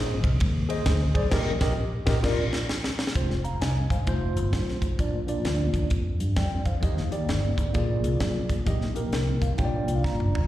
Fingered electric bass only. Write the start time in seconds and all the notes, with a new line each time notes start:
Already playing: A#1
0.24 C2
0.41 D#2
0.86 D2
1.15 B1
1.32 A#1
1.61 A#1
2.07 A#1
2.24 A#1
3.15 F1
3.61 C2
3.90 G#1
4.07 F1
4.36 G1
4.53 B1
4.99 A#1
5.44 D2
5.74 D#2
5.91 F2
6.20 G2
6.37 F2
6.83 D#2
7.29 G1
7.58 G#1
7.75 A#1
8.03 C2
8.21 B1
8.67 A#1
9.12 C2
9.59 A#1
9.87 C2
10.04 F#1